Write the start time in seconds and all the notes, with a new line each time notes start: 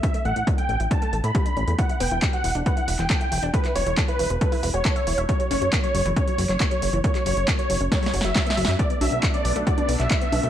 0.03 D4 E5, kick, closed hi-hat
0.14 A3, closed hi-hat
0.25 A1 A3 F#5, closed hi-hat
0.36 A1 A2, closed hi-hat
0.47 D4, kick, closed hi-hat
0.58 A3 G5, closed hi-hat
0.69 A1 A3, closed hi-hat
0.80 A1 E4, closed hi-hat
0.91 D4 A5, kick, closed hi-hat
1.02 A3, closed hi-hat
1.13 A1 A3, closed hi-hat
1.24 A2 A3 B5, closed hi-hat
1.35 G3, kick, closed hi-hat
1.46 D4, closed hi-hat
1.57 A1 C#4, closed hi-hat
1.68 E2 A3, closed hi-hat
1.79 E4 F#5, kick, closed hi-hat
1.89 E4, closed hi-hat
2.00 E1 B3 G5, open hi-hat
2.11 E1 E4, closed hi-hat
2.22 G4, kick, clap, closed hi-hat
2.33 F#4 F#5, closed hi-hat
2.44 E1 E4, open hi-hat
2.55 E1 D4, closed hi-hat
2.66 B4 F#5, kick, closed hi-hat
2.77 E4, closed hi-hat
2.88 E1 E4, open hi-hat
2.99 E1 E3 G5, clap, closed hi-hat
3.10 A4, kick, clap, closed hi-hat
3.21 E4, closed hi-hat
3.32 E1 E4, open hi-hat
3.43 E1 D4, closed hi-hat
3.54 A4 B4, kick, closed hi-hat
3.65 E4, clap, closed hi-hat
3.75 E1 E4 C#5, open hi-hat
3.86 E1 E3, closed hi-hat
3.97 A4, kick, clap, closed hi-hat
4.08 E4 B4, closed hi-hat
4.19 E1 E4, open hi-hat
4.30 E1 B4, closed hi-hat
4.41 A4 B4, kick, closed hi-hat
4.52 E4, open hi-hat
4.63 E1 E4, open hi-hat
4.74 E1 F#4 C#5, closed hi-hat
4.85 A4, kick, clap, closed hi-hat
4.96 E5, closed hi-hat
5.07 E1 E4, open hi-hat
5.18 E1 E5, closed hi-hat
5.29 F#3 C#5, kick, closed hi-hat
5.40 F#3, closed hi-hat
5.51 F#1 C#3 C#5, open hi-hat
5.62 F#1 F#3, closed hi-hat
5.73 A#3, kick, clap, closed hi-hat
5.84 F#3 C#5, closed hi-hat
5.94 F#1 F#3, open hi-hat
6.05 F#1 E3, closed hi-hat
6.16 C#4 C#5, kick, closed hi-hat
6.27 F#3, closed hi-hat
6.38 F#1 F#3, open hi-hat
6.49 F#1 F#2 C#5, clap, closed hi-hat
6.60 A#3, kick, clap, closed hi-hat
6.71 F#3, closed hi-hat
6.82 F#1 F#3, open hi-hat
6.93 F#1 E3, closed hi-hat
7.04 A#3 C#5, kick, closed hi-hat
7.15 F#3, clap, closed hi-hat
7.26 F#1 F#3 C#5, open hi-hat
7.37 F#1 F#2, closed hi-hat
7.48 A#3, kick, clap, closed hi-hat
7.59 F#3 C#5, closed hi-hat
7.70 F#1 F#3, open hi-hat
7.81 F#1 C#4, closed hi-hat
7.92 A#3 C#5, kick, snare, closed hi-hat
8.03 F#3, snare, open hi-hat
8.14 F#1 F#4, open hi-hat
8.21 F#1 F#3 E5, snare, closed hi-hat
8.35 kick, snare, clap, closed hi-hat
8.46 A#3, snare, closed hi-hat
8.57 F#1 F#3, open hi-hat
8.65 F#2 F#3, snare, closed hi-hat
8.79 A3 B3 D4 D5, kick, closed hi-hat
8.90 B3, closed hi-hat
9.01 B1 F#3 E5, open hi-hat, high conga
9.12 B1 B3, closed hi-hat
9.23 D4, kick, clap, closed hi-hat
9.34 C#4 D5, closed hi-hat
9.45 B1 B3, open hi-hat
9.56 B1 A3, closed hi-hat
9.67 F#4 D5, kick, closed hi-hat
9.78 B3, closed hi-hat, high conga
9.89 B1 B3, open hi-hat
10.00 B1 B2 E5, clap, closed hi-hat
10.11 E4, kick, clap, closed hi-hat
10.21 B3, closed hi-hat
10.32 B1 B3, open hi-hat, high conga
10.43 B1 A3, closed hi-hat